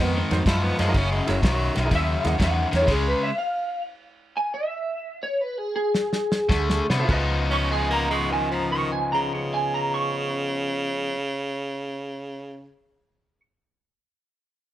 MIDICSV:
0, 0, Header, 1, 7, 480
1, 0, Start_track
1, 0, Tempo, 484653
1, 934, Time_signature, 4, 2, 24, 8
1, 3816, Tempo, 505476
1, 4776, Tempo, 534283
1, 5736, Tempo, 577478
1, 6696, Tempo, 604230
1, 12771, End_track
2, 0, Start_track
2, 0, Title_t, "Clean electric guitar"
2, 0, Program_c, 0, 27
2, 12, Note_on_c, 0, 59, 79
2, 149, Note_off_c, 0, 59, 0
2, 166, Note_on_c, 0, 60, 87
2, 411, Note_off_c, 0, 60, 0
2, 1934, Note_on_c, 0, 76, 88
2, 2247, Note_off_c, 0, 76, 0
2, 2247, Note_on_c, 0, 78, 84
2, 2385, Note_off_c, 0, 78, 0
2, 2403, Note_on_c, 0, 78, 91
2, 2698, Note_off_c, 0, 78, 0
2, 2728, Note_on_c, 0, 73, 79
2, 2865, Note_off_c, 0, 73, 0
2, 2883, Note_on_c, 0, 68, 84
2, 3022, Note_off_c, 0, 68, 0
2, 3047, Note_on_c, 0, 71, 81
2, 3185, Note_off_c, 0, 71, 0
2, 3199, Note_on_c, 0, 76, 88
2, 3341, Note_off_c, 0, 76, 0
2, 3349, Note_on_c, 0, 77, 94
2, 3812, Note_off_c, 0, 77, 0
2, 4305, Note_on_c, 0, 80, 94
2, 4454, Note_off_c, 0, 80, 0
2, 4467, Note_on_c, 0, 76, 90
2, 5079, Note_off_c, 0, 76, 0
2, 5103, Note_on_c, 0, 73, 86
2, 5264, Note_off_c, 0, 73, 0
2, 5264, Note_on_c, 0, 71, 82
2, 5417, Note_off_c, 0, 71, 0
2, 5417, Note_on_c, 0, 68, 88
2, 5567, Note_off_c, 0, 68, 0
2, 5578, Note_on_c, 0, 68, 91
2, 6511, Note_off_c, 0, 68, 0
2, 7049, Note_on_c, 0, 85, 102
2, 7189, Note_off_c, 0, 85, 0
2, 7200, Note_on_c, 0, 80, 88
2, 7344, Note_off_c, 0, 80, 0
2, 7364, Note_on_c, 0, 82, 76
2, 7506, Note_off_c, 0, 82, 0
2, 7522, Note_on_c, 0, 85, 94
2, 7665, Note_off_c, 0, 85, 0
2, 7679, Note_on_c, 0, 80, 83
2, 7837, Note_off_c, 0, 80, 0
2, 7837, Note_on_c, 0, 82, 89
2, 7983, Note_off_c, 0, 82, 0
2, 7994, Note_on_c, 0, 85, 88
2, 8141, Note_off_c, 0, 85, 0
2, 8153, Note_on_c, 0, 80, 80
2, 8300, Note_off_c, 0, 80, 0
2, 8312, Note_on_c, 0, 82, 81
2, 8475, Note_off_c, 0, 82, 0
2, 8475, Note_on_c, 0, 85, 85
2, 8621, Note_off_c, 0, 85, 0
2, 8645, Note_on_c, 0, 80, 81
2, 8787, Note_off_c, 0, 80, 0
2, 8805, Note_on_c, 0, 82, 77
2, 8947, Note_off_c, 0, 82, 0
2, 8962, Note_on_c, 0, 85, 94
2, 11710, Note_off_c, 0, 85, 0
2, 12771, End_track
3, 0, Start_track
3, 0, Title_t, "Grand piano"
3, 0, Program_c, 1, 0
3, 305, Note_on_c, 1, 63, 64
3, 306, Note_on_c, 1, 66, 60
3, 310, Note_on_c, 1, 70, 63
3, 321, Note_on_c, 1, 72, 70
3, 380, Note_off_c, 1, 63, 0
3, 381, Note_off_c, 1, 66, 0
3, 382, Note_off_c, 1, 70, 0
3, 388, Note_off_c, 1, 72, 0
3, 776, Note_on_c, 1, 70, 52
3, 797, Note_on_c, 1, 72, 54
3, 817, Note_off_c, 1, 70, 0
3, 827, Note_off_c, 1, 72, 0
3, 861, Note_on_c, 1, 63, 75
3, 869, Note_on_c, 1, 66, 70
3, 874, Note_on_c, 1, 70, 73
3, 885, Note_on_c, 1, 75, 79
3, 936, Note_off_c, 1, 63, 0
3, 940, Note_off_c, 1, 66, 0
3, 943, Note_off_c, 1, 70, 0
3, 948, Note_off_c, 1, 75, 0
3, 1252, Note_on_c, 1, 64, 83
3, 1260, Note_on_c, 1, 68, 80
3, 1269, Note_on_c, 1, 70, 74
3, 1271, Note_on_c, 1, 73, 97
3, 1333, Note_off_c, 1, 64, 0
3, 1337, Note_off_c, 1, 68, 0
3, 1341, Note_off_c, 1, 70, 0
3, 1342, Note_off_c, 1, 73, 0
3, 1729, Note_on_c, 1, 70, 49
3, 1751, Note_on_c, 1, 76, 55
3, 1772, Note_off_c, 1, 70, 0
3, 1783, Note_off_c, 1, 76, 0
3, 1825, Note_on_c, 1, 64, 64
3, 1830, Note_on_c, 1, 68, 56
3, 1837, Note_on_c, 1, 70, 55
3, 1848, Note_on_c, 1, 75, 70
3, 1897, Note_off_c, 1, 64, 0
3, 1900, Note_off_c, 1, 68, 0
3, 1903, Note_off_c, 1, 70, 0
3, 1909, Note_off_c, 1, 75, 0
3, 2218, Note_on_c, 1, 64, 67
3, 2228, Note_on_c, 1, 68, 59
3, 2233, Note_on_c, 1, 70, 63
3, 2243, Note_on_c, 1, 75, 70
3, 2295, Note_off_c, 1, 64, 0
3, 2300, Note_off_c, 1, 68, 0
3, 2302, Note_off_c, 1, 70, 0
3, 2307, Note_off_c, 1, 75, 0
3, 2697, Note_on_c, 1, 70, 44
3, 2718, Note_on_c, 1, 73, 46
3, 2736, Note_off_c, 1, 70, 0
3, 2746, Note_off_c, 1, 73, 0
3, 2784, Note_on_c, 1, 64, 66
3, 2787, Note_on_c, 1, 68, 59
3, 2791, Note_on_c, 1, 70, 62
3, 2800, Note_on_c, 1, 73, 70
3, 2856, Note_off_c, 1, 64, 0
3, 2857, Note_off_c, 1, 68, 0
3, 2859, Note_off_c, 1, 70, 0
3, 2864, Note_off_c, 1, 73, 0
3, 6535, Note_on_c, 1, 72, 51
3, 6550, Note_on_c, 1, 76, 51
3, 6576, Note_off_c, 1, 72, 0
3, 6583, Note_off_c, 1, 76, 0
3, 6612, Note_on_c, 1, 66, 71
3, 6616, Note_on_c, 1, 69, 66
3, 6620, Note_on_c, 1, 72, 66
3, 6625, Note_on_c, 1, 76, 82
3, 6662, Note_on_c, 1, 65, 77
3, 6685, Note_on_c, 1, 68, 65
3, 6695, Note_off_c, 1, 66, 0
3, 6697, Note_off_c, 1, 69, 0
3, 6699, Note_off_c, 1, 72, 0
3, 6701, Note_off_c, 1, 76, 0
3, 6707, Note_on_c, 1, 71, 68
3, 6725, Note_on_c, 1, 75, 85
3, 9854, Note_off_c, 1, 65, 0
3, 9876, Note_off_c, 1, 68, 0
3, 9898, Note_off_c, 1, 71, 0
3, 9916, Note_off_c, 1, 75, 0
3, 12771, End_track
4, 0, Start_track
4, 0, Title_t, "Tenor saxophone"
4, 0, Program_c, 2, 66
4, 477, Note_on_c, 2, 64, 82
4, 629, Note_on_c, 2, 59, 75
4, 644, Note_off_c, 2, 64, 0
4, 777, Note_off_c, 2, 59, 0
4, 785, Note_on_c, 2, 56, 81
4, 956, Note_on_c, 2, 61, 82
4, 971, Note_off_c, 2, 56, 0
4, 1100, Note_off_c, 2, 61, 0
4, 1105, Note_on_c, 2, 56, 74
4, 1257, Note_on_c, 2, 54, 75
4, 1272, Note_off_c, 2, 56, 0
4, 1411, Note_off_c, 2, 54, 0
4, 1421, Note_on_c, 2, 54, 77
4, 1807, Note_off_c, 2, 54, 0
4, 7029, Note_on_c, 2, 61, 78
4, 7191, Note_on_c, 2, 56, 81
4, 7203, Note_off_c, 2, 61, 0
4, 7339, Note_off_c, 2, 56, 0
4, 7345, Note_on_c, 2, 58, 84
4, 7496, Note_off_c, 2, 58, 0
4, 7504, Note_on_c, 2, 56, 86
4, 7670, Note_on_c, 2, 51, 82
4, 7682, Note_off_c, 2, 56, 0
4, 7819, Note_off_c, 2, 51, 0
4, 7827, Note_on_c, 2, 53, 76
4, 7995, Note_on_c, 2, 51, 83
4, 8007, Note_off_c, 2, 53, 0
4, 8142, Note_off_c, 2, 51, 0
4, 8323, Note_on_c, 2, 49, 79
4, 8466, Note_off_c, 2, 49, 0
4, 8487, Note_on_c, 2, 49, 93
4, 11156, Note_off_c, 2, 49, 0
4, 12771, End_track
5, 0, Start_track
5, 0, Title_t, "Overdriven electric guitar"
5, 0, Program_c, 3, 29
5, 0, Note_on_c, 3, 44, 73
5, 0, Note_on_c, 3, 51, 94
5, 423, Note_off_c, 3, 44, 0
5, 425, Note_off_c, 3, 51, 0
5, 455, Note_on_c, 3, 44, 74
5, 464, Note_on_c, 3, 53, 85
5, 748, Note_off_c, 3, 44, 0
5, 752, Note_off_c, 3, 53, 0
5, 777, Note_on_c, 3, 44, 74
5, 780, Note_on_c, 3, 53, 79
5, 917, Note_off_c, 3, 44, 0
5, 919, Note_off_c, 3, 53, 0
5, 939, Note_on_c, 3, 42, 77
5, 940, Note_on_c, 3, 49, 91
5, 1385, Note_off_c, 3, 42, 0
5, 1385, Note_off_c, 3, 49, 0
5, 1409, Note_on_c, 3, 42, 77
5, 1410, Note_on_c, 3, 51, 88
5, 1704, Note_off_c, 3, 42, 0
5, 1704, Note_off_c, 3, 51, 0
5, 1739, Note_on_c, 3, 42, 63
5, 1745, Note_on_c, 3, 51, 71
5, 1871, Note_off_c, 3, 42, 0
5, 1880, Note_off_c, 3, 51, 0
5, 1883, Note_on_c, 3, 42, 83
5, 1891, Note_on_c, 3, 49, 87
5, 2336, Note_off_c, 3, 42, 0
5, 2340, Note_off_c, 3, 49, 0
5, 2357, Note_on_c, 3, 42, 89
5, 2363, Note_on_c, 3, 51, 92
5, 2657, Note_off_c, 3, 42, 0
5, 2660, Note_off_c, 3, 51, 0
5, 2686, Note_on_c, 3, 42, 70
5, 2688, Note_on_c, 3, 51, 82
5, 2830, Note_off_c, 3, 42, 0
5, 2831, Note_off_c, 3, 51, 0
5, 2837, Note_on_c, 3, 49, 76
5, 2843, Note_on_c, 3, 56, 87
5, 3263, Note_off_c, 3, 49, 0
5, 3265, Note_off_c, 3, 56, 0
5, 6198, Note_on_c, 3, 50, 83
5, 6204, Note_on_c, 3, 57, 83
5, 6499, Note_off_c, 3, 50, 0
5, 6502, Note_off_c, 3, 57, 0
5, 6540, Note_on_c, 3, 50, 65
5, 6546, Note_on_c, 3, 59, 77
5, 6683, Note_off_c, 3, 50, 0
5, 6685, Note_off_c, 3, 59, 0
5, 6690, Note_on_c, 3, 49, 80
5, 6704, Note_on_c, 3, 53, 87
5, 6714, Note_on_c, 3, 59, 90
5, 6722, Note_on_c, 3, 63, 96
5, 9913, Note_off_c, 3, 49, 0
5, 9927, Note_off_c, 3, 53, 0
5, 9936, Note_off_c, 3, 59, 0
5, 9944, Note_off_c, 3, 63, 0
5, 12771, End_track
6, 0, Start_track
6, 0, Title_t, "Fingered electric bass"
6, 0, Program_c, 4, 33
6, 0, Note_on_c, 4, 41, 86
6, 220, Note_off_c, 4, 41, 0
6, 309, Note_on_c, 4, 41, 78
6, 423, Note_off_c, 4, 41, 0
6, 457, Note_on_c, 4, 42, 83
6, 703, Note_off_c, 4, 42, 0
6, 785, Note_on_c, 4, 42, 78
6, 900, Note_off_c, 4, 42, 0
6, 932, Note_on_c, 4, 30, 94
6, 1180, Note_off_c, 4, 30, 0
6, 1271, Note_on_c, 4, 30, 76
6, 1383, Note_off_c, 4, 30, 0
6, 1420, Note_on_c, 4, 35, 87
6, 1664, Note_off_c, 4, 35, 0
6, 1751, Note_on_c, 4, 35, 84
6, 1863, Note_off_c, 4, 35, 0
6, 1895, Note_on_c, 4, 39, 85
6, 2141, Note_off_c, 4, 39, 0
6, 2226, Note_on_c, 4, 39, 87
6, 2339, Note_off_c, 4, 39, 0
6, 2372, Note_on_c, 4, 40, 82
6, 2618, Note_off_c, 4, 40, 0
6, 2702, Note_on_c, 4, 40, 82
6, 2817, Note_off_c, 4, 40, 0
6, 2852, Note_on_c, 4, 37, 94
6, 3098, Note_off_c, 4, 37, 0
6, 6205, Note_on_c, 4, 38, 82
6, 6456, Note_off_c, 4, 38, 0
6, 6538, Note_on_c, 4, 48, 78
6, 6659, Note_off_c, 4, 48, 0
6, 6697, Note_on_c, 4, 37, 92
6, 9888, Note_off_c, 4, 37, 0
6, 12771, End_track
7, 0, Start_track
7, 0, Title_t, "Drums"
7, 306, Note_on_c, 9, 51, 59
7, 319, Note_on_c, 9, 38, 32
7, 405, Note_off_c, 9, 51, 0
7, 418, Note_off_c, 9, 38, 0
7, 455, Note_on_c, 9, 36, 85
7, 458, Note_on_c, 9, 51, 80
7, 471, Note_on_c, 9, 38, 103
7, 554, Note_off_c, 9, 36, 0
7, 557, Note_off_c, 9, 51, 0
7, 570, Note_off_c, 9, 38, 0
7, 781, Note_on_c, 9, 51, 62
7, 794, Note_on_c, 9, 38, 32
7, 880, Note_off_c, 9, 51, 0
7, 893, Note_off_c, 9, 38, 0
7, 934, Note_on_c, 9, 36, 83
7, 935, Note_on_c, 9, 51, 79
7, 948, Note_on_c, 9, 38, 32
7, 1033, Note_off_c, 9, 36, 0
7, 1034, Note_off_c, 9, 51, 0
7, 1047, Note_off_c, 9, 38, 0
7, 1263, Note_on_c, 9, 51, 58
7, 1276, Note_on_c, 9, 38, 33
7, 1362, Note_off_c, 9, 51, 0
7, 1375, Note_off_c, 9, 38, 0
7, 1416, Note_on_c, 9, 36, 81
7, 1418, Note_on_c, 9, 51, 79
7, 1431, Note_on_c, 9, 38, 103
7, 1515, Note_off_c, 9, 36, 0
7, 1517, Note_off_c, 9, 51, 0
7, 1530, Note_off_c, 9, 38, 0
7, 1738, Note_on_c, 9, 51, 57
7, 1751, Note_on_c, 9, 38, 33
7, 1837, Note_off_c, 9, 51, 0
7, 1850, Note_off_c, 9, 38, 0
7, 1895, Note_on_c, 9, 36, 80
7, 1895, Note_on_c, 9, 51, 75
7, 1908, Note_on_c, 9, 38, 35
7, 1994, Note_off_c, 9, 36, 0
7, 1994, Note_off_c, 9, 51, 0
7, 2007, Note_off_c, 9, 38, 0
7, 2224, Note_on_c, 9, 51, 57
7, 2237, Note_on_c, 9, 38, 32
7, 2323, Note_off_c, 9, 51, 0
7, 2336, Note_off_c, 9, 38, 0
7, 2374, Note_on_c, 9, 36, 83
7, 2376, Note_on_c, 9, 51, 75
7, 2389, Note_on_c, 9, 38, 104
7, 2473, Note_off_c, 9, 36, 0
7, 2475, Note_off_c, 9, 51, 0
7, 2488, Note_off_c, 9, 38, 0
7, 2702, Note_on_c, 9, 51, 55
7, 2715, Note_on_c, 9, 38, 31
7, 2801, Note_off_c, 9, 51, 0
7, 2814, Note_off_c, 9, 38, 0
7, 2852, Note_on_c, 9, 36, 81
7, 2853, Note_on_c, 9, 49, 75
7, 2853, Note_on_c, 9, 51, 76
7, 2865, Note_on_c, 9, 38, 32
7, 2951, Note_off_c, 9, 36, 0
7, 2952, Note_off_c, 9, 49, 0
7, 2952, Note_off_c, 9, 51, 0
7, 2964, Note_off_c, 9, 38, 0
7, 5747, Note_on_c, 9, 38, 60
7, 5830, Note_off_c, 9, 38, 0
7, 5898, Note_on_c, 9, 38, 52
7, 5981, Note_off_c, 9, 38, 0
7, 6056, Note_on_c, 9, 38, 69
7, 6139, Note_off_c, 9, 38, 0
7, 6203, Note_on_c, 9, 36, 87
7, 6214, Note_on_c, 9, 38, 85
7, 6286, Note_off_c, 9, 36, 0
7, 6297, Note_off_c, 9, 38, 0
7, 6372, Note_on_c, 9, 38, 80
7, 6455, Note_off_c, 9, 38, 0
7, 6540, Note_on_c, 9, 38, 82
7, 6623, Note_off_c, 9, 38, 0
7, 6697, Note_on_c, 9, 36, 104
7, 6700, Note_on_c, 9, 49, 79
7, 6776, Note_off_c, 9, 36, 0
7, 6780, Note_off_c, 9, 49, 0
7, 12771, End_track
0, 0, End_of_file